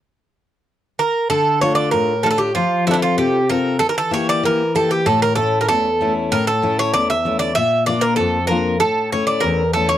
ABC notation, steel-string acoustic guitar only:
X:1
M:2/4
L:1/8
Q:1/4=96
K:Dm
V:1 name="Steel-string acoustic guitar"
z4 | D, [A,DF] A,, [A,DF] | F, [CFA] C, [CFA] | E, [B,EG] E, [B,EG] |
A,, [A,^CE] E,, [A,CE] | A,, [A,^CE] E,, [A,CE] | B,, [B,DF] F,, [B,DF] | A,, [A,^CE] E,, [A,CE] |]